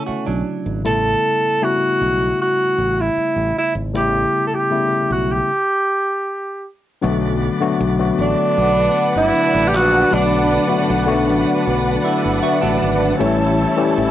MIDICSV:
0, 0, Header, 1, 8, 480
1, 0, Start_track
1, 0, Key_signature, 2, "minor"
1, 0, Tempo, 772201
1, 521, Time_signature, 4, 2, 24, 8
1, 8770, End_track
2, 0, Start_track
2, 0, Title_t, "Tonewheel organ"
2, 0, Program_c, 0, 16
2, 4367, Note_on_c, 0, 81, 73
2, 4368, Note_on_c, 0, 66, 68
2, 4368, Note_on_c, 0, 74, 58
2, 4369, Note_on_c, 0, 71, 59
2, 8179, Note_off_c, 0, 66, 0
2, 8179, Note_off_c, 0, 74, 0
2, 8180, Note_off_c, 0, 71, 0
2, 8208, Note_on_c, 0, 67, 76
2, 8208, Note_on_c, 0, 73, 64
2, 8210, Note_on_c, 0, 76, 62
2, 8770, Note_off_c, 0, 67, 0
2, 8770, Note_off_c, 0, 73, 0
2, 8770, Note_off_c, 0, 76, 0
2, 8770, Note_off_c, 0, 81, 0
2, 8770, End_track
3, 0, Start_track
3, 0, Title_t, "String section"
3, 0, Program_c, 1, 48
3, 5325, Note_on_c, 1, 78, 94
3, 5326, Note_on_c, 1, 71, 79
3, 5329, Note_on_c, 1, 62, 80
3, 8178, Note_off_c, 1, 71, 0
3, 8178, Note_off_c, 1, 78, 0
3, 8180, Note_off_c, 1, 62, 0
3, 8204, Note_on_c, 1, 64, 88
3, 8204, Note_on_c, 1, 73, 76
3, 8206, Note_on_c, 1, 81, 94
3, 8770, Note_off_c, 1, 64, 0
3, 8770, Note_off_c, 1, 73, 0
3, 8770, Note_off_c, 1, 81, 0
3, 8770, End_track
4, 0, Start_track
4, 0, Title_t, "Tenor saxophone"
4, 0, Program_c, 2, 66
4, 0, Note_on_c, 2, 61, 93
4, 288, Note_off_c, 2, 61, 0
4, 537, Note_on_c, 2, 69, 100
4, 1019, Note_on_c, 2, 66, 100
4, 1029, Note_off_c, 2, 69, 0
4, 1492, Note_off_c, 2, 66, 0
4, 1502, Note_on_c, 2, 66, 92
4, 1868, Note_on_c, 2, 64, 86
4, 1877, Note_off_c, 2, 66, 0
4, 2217, Note_off_c, 2, 64, 0
4, 2225, Note_on_c, 2, 64, 82
4, 2325, Note_off_c, 2, 64, 0
4, 2465, Note_on_c, 2, 67, 85
4, 2751, Note_off_c, 2, 67, 0
4, 2776, Note_on_c, 2, 69, 63
4, 2822, Note_on_c, 2, 67, 77
4, 2831, Note_off_c, 2, 69, 0
4, 3175, Note_off_c, 2, 67, 0
4, 3182, Note_on_c, 2, 66, 71
4, 3307, Note_on_c, 2, 67, 81
4, 3316, Note_off_c, 2, 66, 0
4, 4138, Note_off_c, 2, 67, 0
4, 5105, Note_on_c, 2, 62, 91
4, 5671, Note_off_c, 2, 62, 0
4, 5704, Note_on_c, 2, 64, 107
4, 6016, Note_on_c, 2, 67, 79
4, 6025, Note_off_c, 2, 64, 0
4, 6067, Note_on_c, 2, 66, 127
4, 6077, Note_off_c, 2, 67, 0
4, 6304, Note_on_c, 2, 62, 97
4, 6313, Note_off_c, 2, 66, 0
4, 6775, Note_off_c, 2, 62, 0
4, 8770, End_track
5, 0, Start_track
5, 0, Title_t, "Clean electric guitar"
5, 0, Program_c, 3, 27
5, 41, Note_on_c, 3, 66, 57
5, 46, Note_on_c, 3, 57, 52
5, 154, Note_off_c, 3, 66, 0
5, 157, Note_off_c, 3, 57, 0
5, 165, Note_on_c, 3, 62, 66
5, 169, Note_on_c, 3, 54, 60
5, 505, Note_off_c, 3, 62, 0
5, 508, Note_off_c, 3, 54, 0
5, 7485, Note_on_c, 3, 64, 69
5, 7713, Note_off_c, 3, 64, 0
5, 7724, Note_on_c, 3, 66, 76
5, 7728, Note_on_c, 3, 57, 65
5, 7838, Note_off_c, 3, 66, 0
5, 7841, Note_off_c, 3, 57, 0
5, 7842, Note_on_c, 3, 62, 88
5, 7847, Note_on_c, 3, 54, 72
5, 8185, Note_off_c, 3, 62, 0
5, 8188, Note_off_c, 3, 54, 0
5, 8770, End_track
6, 0, Start_track
6, 0, Title_t, "Tine electric piano"
6, 0, Program_c, 4, 4
6, 0, Control_c, 4, 64, 127
6, 0, Note_on_c, 4, 49, 69
6, 0, Note_on_c, 4, 57, 71
6, 0, Note_on_c, 4, 59, 62
6, 0, Note_on_c, 4, 61, 68
6, 0, Note_on_c, 4, 64, 83
6, 520, Note_on_c, 4, 47, 58
6, 522, Note_on_c, 4, 55, 63
6, 524, Note_off_c, 4, 57, 0
6, 524, Note_on_c, 4, 57, 65
6, 526, Note_off_c, 4, 59, 0
6, 526, Note_on_c, 4, 59, 60
6, 527, Note_off_c, 4, 64, 0
6, 527, Note_on_c, 4, 64, 80
6, 529, Control_c, 4, 64, 0
6, 530, Note_off_c, 4, 61, 0
6, 533, Note_off_c, 4, 49, 0
6, 560, Note_on_c, 4, 49, 64
6, 561, Note_off_c, 4, 47, 0
6, 635, Control_c, 4, 64, 127
6, 965, Note_off_c, 4, 55, 0
6, 966, Note_off_c, 4, 57, 0
6, 967, Note_off_c, 4, 59, 0
6, 968, Note_off_c, 4, 64, 0
6, 984, Note_off_c, 4, 49, 0
6, 1004, Note_on_c, 4, 49, 65
6, 1005, Note_on_c, 4, 55, 69
6, 1006, Note_on_c, 4, 57, 66
6, 1009, Note_on_c, 4, 59, 63
6, 1011, Note_on_c, 4, 64, 78
6, 1890, Note_off_c, 4, 49, 0
6, 1890, Note_off_c, 4, 55, 0
6, 1891, Note_off_c, 4, 57, 0
6, 1892, Note_off_c, 4, 59, 0
6, 1893, Note_off_c, 4, 64, 0
6, 2444, Note_on_c, 4, 49, 71
6, 2446, Note_on_c, 4, 55, 67
6, 2450, Note_on_c, 4, 57, 62
6, 2451, Note_on_c, 4, 59, 57
6, 2454, Note_on_c, 4, 64, 80
6, 2888, Note_off_c, 4, 49, 0
6, 2889, Note_off_c, 4, 55, 0
6, 2891, Note_off_c, 4, 57, 0
6, 2892, Note_off_c, 4, 59, 0
6, 2893, Note_off_c, 4, 64, 0
6, 2924, Note_on_c, 4, 49, 70
6, 2927, Note_on_c, 4, 55, 64
6, 2929, Note_on_c, 4, 57, 67
6, 2932, Note_on_c, 4, 59, 70
6, 2934, Note_on_c, 4, 64, 83
6, 3406, Note_off_c, 4, 49, 0
6, 3408, Note_off_c, 4, 55, 0
6, 3409, Note_off_c, 4, 57, 0
6, 3410, Note_off_c, 4, 59, 0
6, 3412, Note_off_c, 4, 64, 0
6, 3417, Control_c, 4, 64, 0
6, 4362, Note_on_c, 4, 50, 90
6, 4364, Note_on_c, 4, 54, 85
6, 4369, Note_on_c, 4, 57, 85
6, 4369, Note_on_c, 4, 59, 89
6, 4372, Note_on_c, 4, 66, 96
6, 4481, Control_c, 4, 64, 127
6, 4697, Note_off_c, 4, 50, 0
6, 4698, Note_off_c, 4, 54, 0
6, 4700, Note_off_c, 4, 57, 0
6, 4700, Note_off_c, 4, 59, 0
6, 4702, Note_off_c, 4, 66, 0
6, 4725, Note_on_c, 4, 50, 94
6, 4730, Note_on_c, 4, 54, 86
6, 4731, Note_on_c, 4, 57, 88
6, 4735, Note_on_c, 4, 59, 89
6, 4736, Note_on_c, 4, 66, 105
6, 4948, Note_off_c, 4, 50, 0
6, 4950, Note_off_c, 4, 54, 0
6, 4951, Note_off_c, 4, 57, 0
6, 4953, Note_off_c, 4, 59, 0
6, 4953, Note_off_c, 4, 66, 0
6, 4966, Note_on_c, 4, 50, 73
6, 4968, Note_on_c, 4, 54, 73
6, 4968, Note_on_c, 4, 57, 72
6, 4970, Note_on_c, 4, 59, 81
6, 4976, Note_on_c, 4, 66, 88
6, 5850, Note_off_c, 4, 50, 0
6, 5851, Note_off_c, 4, 54, 0
6, 5851, Note_off_c, 4, 57, 0
6, 5852, Note_off_c, 4, 59, 0
6, 5855, Note_off_c, 4, 66, 0
6, 6282, Note_on_c, 4, 50, 77
6, 6286, Note_on_c, 4, 54, 77
6, 6287, Note_on_c, 4, 57, 70
6, 6288, Note_on_c, 4, 59, 75
6, 6290, Note_on_c, 4, 66, 89
6, 6616, Note_off_c, 4, 50, 0
6, 6618, Note_off_c, 4, 54, 0
6, 6618, Note_off_c, 4, 57, 0
6, 6619, Note_off_c, 4, 59, 0
6, 6619, Note_off_c, 4, 66, 0
6, 6638, Note_on_c, 4, 50, 82
6, 6640, Note_on_c, 4, 54, 76
6, 6642, Note_on_c, 4, 57, 73
6, 6645, Note_on_c, 4, 59, 71
6, 6646, Note_on_c, 4, 66, 85
6, 6863, Note_off_c, 4, 50, 0
6, 6864, Note_off_c, 4, 54, 0
6, 6865, Note_off_c, 4, 57, 0
6, 6866, Note_off_c, 4, 59, 0
6, 6867, Note_off_c, 4, 66, 0
6, 6878, Note_on_c, 4, 50, 96
6, 6880, Note_on_c, 4, 54, 86
6, 6881, Note_on_c, 4, 57, 89
6, 6884, Note_on_c, 4, 59, 87
6, 6887, Note_on_c, 4, 66, 104
6, 7723, Note_on_c, 4, 76, 79
6, 7765, Note_off_c, 4, 50, 0
6, 7766, Note_off_c, 4, 54, 0
6, 7767, Note_off_c, 4, 57, 0
6, 7768, Note_off_c, 4, 59, 0
6, 7769, Note_off_c, 4, 66, 0
6, 7835, Note_off_c, 4, 76, 0
6, 7840, Note_on_c, 4, 78, 84
6, 8177, Note_off_c, 4, 78, 0
6, 8197, Note_on_c, 4, 52, 95
6, 8199, Note_on_c, 4, 55, 89
6, 8201, Note_on_c, 4, 57, 90
6, 8202, Note_on_c, 4, 61, 91
6, 8205, Note_on_c, 4, 67, 99
6, 8212, Control_c, 4, 64, 0
6, 8327, Control_c, 4, 64, 127
6, 8532, Note_off_c, 4, 52, 0
6, 8533, Note_off_c, 4, 55, 0
6, 8534, Note_off_c, 4, 57, 0
6, 8534, Note_off_c, 4, 61, 0
6, 8536, Note_off_c, 4, 67, 0
6, 8558, Note_on_c, 4, 52, 97
6, 8561, Note_on_c, 4, 55, 91
6, 8563, Note_on_c, 4, 57, 89
6, 8566, Note_on_c, 4, 61, 91
6, 8567, Note_on_c, 4, 67, 105
6, 8770, Note_off_c, 4, 52, 0
6, 8770, Note_off_c, 4, 55, 0
6, 8770, Note_off_c, 4, 57, 0
6, 8770, Note_off_c, 4, 61, 0
6, 8770, Note_off_c, 4, 67, 0
6, 8770, End_track
7, 0, Start_track
7, 0, Title_t, "Fingered electric bass"
7, 0, Program_c, 5, 33
7, 173, Note_on_c, 5, 35, 68
7, 260, Note_off_c, 5, 35, 0
7, 410, Note_on_c, 5, 32, 77
7, 530, Note_off_c, 5, 32, 0
7, 530, Note_on_c, 5, 33, 88
7, 711, Note_off_c, 5, 33, 0
7, 1252, Note_on_c, 5, 35, 77
7, 1433, Note_off_c, 5, 35, 0
7, 1731, Note_on_c, 5, 33, 80
7, 1913, Note_off_c, 5, 33, 0
7, 2090, Note_on_c, 5, 33, 68
7, 2180, Note_off_c, 5, 33, 0
7, 2331, Note_on_c, 5, 32, 76
7, 2454, Note_off_c, 5, 32, 0
7, 2454, Note_on_c, 5, 33, 97
7, 2635, Note_off_c, 5, 33, 0
7, 3174, Note_on_c, 5, 35, 75
7, 3355, Note_off_c, 5, 35, 0
7, 4376, Note_on_c, 5, 35, 108
7, 4649, Note_off_c, 5, 35, 0
7, 4852, Note_on_c, 5, 35, 93
7, 5034, Note_off_c, 5, 35, 0
7, 5089, Note_on_c, 5, 33, 89
7, 5180, Note_off_c, 5, 33, 0
7, 5332, Note_on_c, 5, 35, 93
7, 5514, Note_off_c, 5, 35, 0
7, 5692, Note_on_c, 5, 31, 81
7, 5782, Note_off_c, 5, 31, 0
7, 5933, Note_on_c, 5, 33, 85
7, 6052, Note_off_c, 5, 33, 0
7, 6052, Note_on_c, 5, 34, 90
7, 6234, Note_off_c, 5, 34, 0
7, 6294, Note_on_c, 5, 35, 106
7, 6566, Note_off_c, 5, 35, 0
7, 6775, Note_on_c, 5, 35, 100
7, 7015, Note_off_c, 5, 35, 0
7, 7015, Note_on_c, 5, 33, 77
7, 7103, Note_off_c, 5, 33, 0
7, 7255, Note_on_c, 5, 35, 93
7, 7435, Note_off_c, 5, 35, 0
7, 7617, Note_on_c, 5, 31, 89
7, 7704, Note_off_c, 5, 31, 0
7, 7852, Note_on_c, 5, 33, 82
7, 7941, Note_off_c, 5, 33, 0
7, 7971, Note_on_c, 5, 32, 97
7, 8152, Note_off_c, 5, 32, 0
7, 8209, Note_on_c, 5, 33, 108
7, 8482, Note_off_c, 5, 33, 0
7, 8689, Note_on_c, 5, 33, 91
7, 8770, Note_off_c, 5, 33, 0
7, 8770, End_track
8, 0, Start_track
8, 0, Title_t, "Muted fingered electric bass strokes"
8, 53, Note_on_c, 9, 29, 45
8, 115, Note_off_c, 9, 29, 0
8, 1972, Note_on_c, 9, 29, 40
8, 2034, Note_off_c, 9, 29, 0
8, 8770, End_track
0, 0, End_of_file